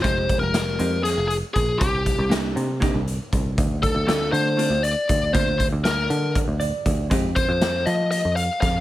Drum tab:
HH |xxxxxxx|xxxxxxx|xxxxxxx|xxxxxxx|
SD |--o-o--|--o-o--|--o----|--o----|
BD |oo----o|oo--o-o|oo----o|oo--o-o|

HH |xxxxxxx|
SD |--o---o|
BD |oo----o|